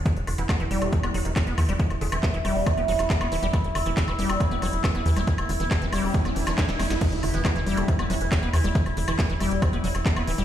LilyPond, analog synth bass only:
\new Staff \with { instrumentName = "Analog synth bass" } { \clef bass \time 4/4 \key e \minor \tempo 4 = 138 r16 e,,16 e,,16 e,,16 r16 e,,16 e,,16 e,,16 r16 e,,16 e,,16 e,,16 r16 e,,16 e,16 e,,16 | r16 e,,16 e,,16 e,,16 r16 e,,16 e,,16 e,,16 r16 e,,16 e,,16 e,,16 r16 e,,16 d,,16 e,,16 | r16 e,,16 e,,16 e,,16 r16 e,,16 e,,16 e,,16 r16 e,,16 e,,16 e,,16 r16 e,,16 e,16 e,,16 | r16 e,,16 e,,16 e,,16 r16 e,,16 e,,16 e,,16 r16 e,,16 e,,16 e,,16 r16 d,,16 e,,16 fis,,16 |
r16 e,,16 e,,16 e,,16 r16 e,,16 e,,16 e,,16 r16 e,,16 e,,16 e,,16 r16 e,,16 e,16 e,,16 | r16 e,,16 e,,16 e,,16 r16 e,,16 e,,16 e,,16 r16 e,,16 e,,16 e,,16 r16 e,,16 d,,16 e,,16 | }